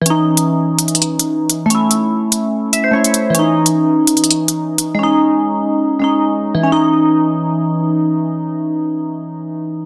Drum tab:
HH |x--------x-----------x--x-x-x----x--------x-----|x-----x-----------x-----------x--------x--x-----|x--------x-----------x--x-x-x----x--------x-----|------------------------------------------------|

HH |------------------------------------------------|------------------------------------------------|